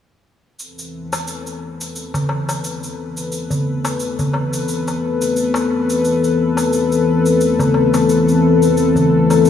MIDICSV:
0, 0, Header, 1, 4, 480
1, 0, Start_track
1, 0, Key_signature, 0, "minor"
1, 0, Tempo, 681818
1, 413, Time_signature, 4, 2, 24, 8
1, 6687, End_track
2, 0, Start_track
2, 0, Title_t, "Analog synth pad"
2, 0, Program_c, 0, 89
2, 412, Note_on_c, 0, 52, 75
2, 413, Note_on_c, 0, 60, 70
2, 413, Note_on_c, 0, 71, 81
2, 414, Note_on_c, 0, 69, 71
2, 6687, Note_off_c, 0, 52, 0
2, 6687, Note_off_c, 0, 60, 0
2, 6687, Note_off_c, 0, 69, 0
2, 6687, Note_off_c, 0, 71, 0
2, 6687, End_track
3, 0, Start_track
3, 0, Title_t, "Darbuka"
3, 794, Note_on_c, 9, 63, 70
3, 864, Note_off_c, 9, 63, 0
3, 1508, Note_on_c, 9, 62, 63
3, 1508, Note_on_c, 9, 64, 74
3, 1578, Note_off_c, 9, 62, 0
3, 1578, Note_off_c, 9, 64, 0
3, 1612, Note_on_c, 9, 63, 61
3, 1683, Note_off_c, 9, 63, 0
3, 1751, Note_on_c, 9, 63, 62
3, 1822, Note_off_c, 9, 63, 0
3, 2467, Note_on_c, 9, 64, 72
3, 2538, Note_off_c, 9, 64, 0
3, 2708, Note_on_c, 9, 63, 73
3, 2779, Note_off_c, 9, 63, 0
3, 2950, Note_on_c, 9, 64, 78
3, 3021, Note_off_c, 9, 64, 0
3, 3051, Note_on_c, 9, 62, 60
3, 3055, Note_on_c, 9, 63, 51
3, 3122, Note_off_c, 9, 62, 0
3, 3126, Note_off_c, 9, 63, 0
3, 3434, Note_on_c, 9, 62, 60
3, 3505, Note_off_c, 9, 62, 0
3, 3901, Note_on_c, 9, 63, 73
3, 3971, Note_off_c, 9, 63, 0
3, 4626, Note_on_c, 9, 63, 63
3, 4696, Note_off_c, 9, 63, 0
3, 5346, Note_on_c, 9, 64, 98
3, 5350, Note_on_c, 9, 62, 55
3, 5416, Note_off_c, 9, 64, 0
3, 5420, Note_off_c, 9, 62, 0
3, 5450, Note_on_c, 9, 63, 60
3, 5520, Note_off_c, 9, 63, 0
3, 5589, Note_on_c, 9, 63, 72
3, 5659, Note_off_c, 9, 63, 0
3, 6305, Note_on_c, 9, 64, 82
3, 6375, Note_off_c, 9, 64, 0
3, 6550, Note_on_c, 9, 63, 62
3, 6620, Note_off_c, 9, 63, 0
3, 6687, End_track
4, 0, Start_track
4, 0, Title_t, "Drums"
4, 418, Note_on_c, 9, 69, 43
4, 488, Note_off_c, 9, 69, 0
4, 554, Note_on_c, 9, 69, 29
4, 624, Note_off_c, 9, 69, 0
4, 793, Note_on_c, 9, 69, 56
4, 864, Note_off_c, 9, 69, 0
4, 898, Note_on_c, 9, 69, 44
4, 969, Note_off_c, 9, 69, 0
4, 1033, Note_on_c, 9, 69, 27
4, 1103, Note_off_c, 9, 69, 0
4, 1273, Note_on_c, 9, 69, 59
4, 1344, Note_off_c, 9, 69, 0
4, 1378, Note_on_c, 9, 69, 46
4, 1448, Note_off_c, 9, 69, 0
4, 1514, Note_on_c, 9, 69, 29
4, 1584, Note_off_c, 9, 69, 0
4, 1754, Note_on_c, 9, 69, 59
4, 1824, Note_off_c, 9, 69, 0
4, 1860, Note_on_c, 9, 69, 52
4, 1931, Note_off_c, 9, 69, 0
4, 1996, Note_on_c, 9, 69, 30
4, 2066, Note_off_c, 9, 69, 0
4, 2232, Note_on_c, 9, 69, 58
4, 2303, Note_off_c, 9, 69, 0
4, 2338, Note_on_c, 9, 69, 45
4, 2408, Note_off_c, 9, 69, 0
4, 2471, Note_on_c, 9, 69, 31
4, 2542, Note_off_c, 9, 69, 0
4, 2710, Note_on_c, 9, 69, 59
4, 2781, Note_off_c, 9, 69, 0
4, 2814, Note_on_c, 9, 69, 49
4, 2884, Note_off_c, 9, 69, 0
4, 2951, Note_on_c, 9, 69, 28
4, 3021, Note_off_c, 9, 69, 0
4, 3191, Note_on_c, 9, 69, 58
4, 3261, Note_off_c, 9, 69, 0
4, 3297, Note_on_c, 9, 69, 48
4, 3368, Note_off_c, 9, 69, 0
4, 3433, Note_on_c, 9, 69, 30
4, 3504, Note_off_c, 9, 69, 0
4, 3672, Note_on_c, 9, 69, 63
4, 3742, Note_off_c, 9, 69, 0
4, 3777, Note_on_c, 9, 69, 54
4, 3847, Note_off_c, 9, 69, 0
4, 3911, Note_on_c, 9, 69, 32
4, 3981, Note_off_c, 9, 69, 0
4, 4152, Note_on_c, 9, 69, 59
4, 4222, Note_off_c, 9, 69, 0
4, 4257, Note_on_c, 9, 69, 47
4, 4327, Note_off_c, 9, 69, 0
4, 4393, Note_on_c, 9, 69, 29
4, 4464, Note_off_c, 9, 69, 0
4, 4631, Note_on_c, 9, 69, 61
4, 4701, Note_off_c, 9, 69, 0
4, 4737, Note_on_c, 9, 69, 51
4, 4807, Note_off_c, 9, 69, 0
4, 4872, Note_on_c, 9, 69, 30
4, 4942, Note_off_c, 9, 69, 0
4, 5109, Note_on_c, 9, 69, 59
4, 5180, Note_off_c, 9, 69, 0
4, 5215, Note_on_c, 9, 69, 50
4, 5286, Note_off_c, 9, 69, 0
4, 5352, Note_on_c, 9, 69, 31
4, 5422, Note_off_c, 9, 69, 0
4, 5589, Note_on_c, 9, 69, 61
4, 5660, Note_off_c, 9, 69, 0
4, 5697, Note_on_c, 9, 69, 56
4, 5768, Note_off_c, 9, 69, 0
4, 5833, Note_on_c, 9, 69, 31
4, 5903, Note_off_c, 9, 69, 0
4, 6071, Note_on_c, 9, 69, 57
4, 6141, Note_off_c, 9, 69, 0
4, 6176, Note_on_c, 9, 69, 44
4, 6246, Note_off_c, 9, 69, 0
4, 6312, Note_on_c, 9, 69, 29
4, 6382, Note_off_c, 9, 69, 0
4, 6551, Note_on_c, 9, 69, 65
4, 6621, Note_off_c, 9, 69, 0
4, 6655, Note_on_c, 9, 69, 50
4, 6687, Note_off_c, 9, 69, 0
4, 6687, End_track
0, 0, End_of_file